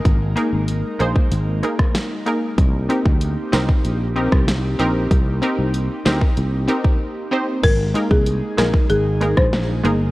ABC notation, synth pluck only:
X:1
M:4/4
L:1/8
Q:1/4=95
K:Ablyd
V:1 name="Synth pluck"
z [B,EAB] z [B,EAc] z [B,EAB] z [B,EAB] | z [CEGB] z [CEGB] z [CEGB] z [CEGB] | z [CEGB] z [CEGB] z [CEGB] z [CEGc] | z [A,B,EAB] z [A,B,EAB] z [A,B,EAB] z [A,B,EAB] |]